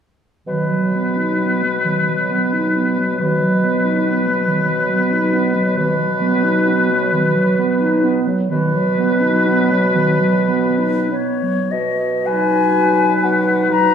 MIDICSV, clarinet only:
0, 0, Header, 1, 2, 480
1, 0, Start_track
1, 0, Key_signature, 5, "major"
1, 0, Tempo, 916031
1, 248, Time_signature, 6, 3, 24, 8
1, 1679, Tempo, 859599
1, 3119, Tempo, 911854
1, 4559, Tempo, 949367
1, 5039, Tempo, 1025641
1, 5519, Tempo, 1224490
1, 5999, Tempo, 1047120
1, 6479, Tempo, 947867
1, 7076, End_track
2, 0, Start_track
2, 0, Title_t, "Clarinet"
2, 0, Program_c, 0, 71
2, 248, Note_on_c, 0, 51, 31
2, 376, Note_on_c, 0, 54, 28
2, 384, Note_off_c, 0, 51, 0
2, 496, Note_on_c, 0, 59, 28
2, 504, Note_off_c, 0, 54, 0
2, 614, Note_on_c, 0, 63, 26
2, 621, Note_off_c, 0, 59, 0
2, 730, Note_on_c, 0, 59, 26
2, 738, Note_off_c, 0, 63, 0
2, 853, Note_on_c, 0, 54, 28
2, 861, Note_off_c, 0, 59, 0
2, 967, Note_on_c, 0, 51, 30
2, 975, Note_off_c, 0, 54, 0
2, 1097, Note_on_c, 0, 54, 28
2, 1105, Note_off_c, 0, 51, 0
2, 1208, Note_on_c, 0, 59, 32
2, 1216, Note_off_c, 0, 54, 0
2, 1327, Note_on_c, 0, 63, 29
2, 1335, Note_off_c, 0, 59, 0
2, 1448, Note_on_c, 0, 59, 31
2, 1455, Note_off_c, 0, 63, 0
2, 1563, Note_on_c, 0, 54, 28
2, 1571, Note_off_c, 0, 59, 0
2, 1679, Note_off_c, 0, 54, 0
2, 1684, Note_on_c, 0, 51, 35
2, 1800, Note_on_c, 0, 54, 30
2, 1808, Note_off_c, 0, 51, 0
2, 1925, Note_on_c, 0, 59, 28
2, 1933, Note_off_c, 0, 54, 0
2, 2041, Note_on_c, 0, 63, 29
2, 2050, Note_off_c, 0, 59, 0
2, 2158, Note_on_c, 0, 59, 29
2, 2167, Note_off_c, 0, 63, 0
2, 2275, Note_on_c, 0, 54, 30
2, 2283, Note_off_c, 0, 59, 0
2, 2391, Note_on_c, 0, 51, 33
2, 2399, Note_off_c, 0, 54, 0
2, 2504, Note_on_c, 0, 54, 30
2, 2512, Note_off_c, 0, 51, 0
2, 2630, Note_on_c, 0, 59, 32
2, 2638, Note_off_c, 0, 54, 0
2, 2751, Note_on_c, 0, 63, 35
2, 2759, Note_off_c, 0, 59, 0
2, 2865, Note_on_c, 0, 59, 36
2, 2874, Note_off_c, 0, 63, 0
2, 2985, Note_on_c, 0, 54, 32
2, 2994, Note_off_c, 0, 59, 0
2, 3109, Note_off_c, 0, 54, 0
2, 3112, Note_on_c, 0, 51, 37
2, 3232, Note_on_c, 0, 54, 34
2, 3240, Note_off_c, 0, 51, 0
2, 3348, Note_on_c, 0, 59, 36
2, 3356, Note_off_c, 0, 54, 0
2, 3467, Note_on_c, 0, 63, 32
2, 3474, Note_off_c, 0, 59, 0
2, 3589, Note_on_c, 0, 59, 34
2, 3597, Note_off_c, 0, 63, 0
2, 3707, Note_on_c, 0, 54, 38
2, 3715, Note_off_c, 0, 59, 0
2, 3827, Note_on_c, 0, 51, 40
2, 3835, Note_off_c, 0, 54, 0
2, 3944, Note_on_c, 0, 54, 36
2, 3952, Note_off_c, 0, 51, 0
2, 4067, Note_on_c, 0, 59, 40
2, 4075, Note_off_c, 0, 54, 0
2, 4185, Note_on_c, 0, 63, 42
2, 4193, Note_off_c, 0, 59, 0
2, 4308, Note_on_c, 0, 59, 40
2, 4316, Note_off_c, 0, 63, 0
2, 4429, Note_on_c, 0, 54, 37
2, 4437, Note_off_c, 0, 59, 0
2, 4547, Note_off_c, 0, 54, 0
2, 4551, Note_on_c, 0, 51, 44
2, 4673, Note_on_c, 0, 54, 39
2, 4680, Note_off_c, 0, 51, 0
2, 4794, Note_on_c, 0, 59, 41
2, 4802, Note_off_c, 0, 54, 0
2, 4911, Note_on_c, 0, 63, 37
2, 4918, Note_off_c, 0, 59, 0
2, 5033, Note_on_c, 0, 59, 38
2, 5041, Note_off_c, 0, 63, 0
2, 5151, Note_on_c, 0, 54, 38
2, 5158, Note_off_c, 0, 59, 0
2, 5268, Note_on_c, 0, 51, 38
2, 5275, Note_off_c, 0, 54, 0
2, 5382, Note_on_c, 0, 54, 36
2, 5389, Note_off_c, 0, 51, 0
2, 5516, Note_on_c, 0, 59, 38
2, 5523, Note_off_c, 0, 54, 0
2, 5635, Note_on_c, 0, 63, 36
2, 5640, Note_off_c, 0, 59, 0
2, 5754, Note_on_c, 0, 59, 36
2, 5760, Note_off_c, 0, 63, 0
2, 5885, Note_on_c, 0, 54, 32
2, 5891, Note_off_c, 0, 59, 0
2, 6000, Note_off_c, 0, 54, 0
2, 6251, Note_on_c, 0, 63, 32
2, 6947, Note_off_c, 0, 63, 0
2, 6966, Note_on_c, 0, 63, 32
2, 7076, Note_off_c, 0, 63, 0
2, 7076, End_track
0, 0, End_of_file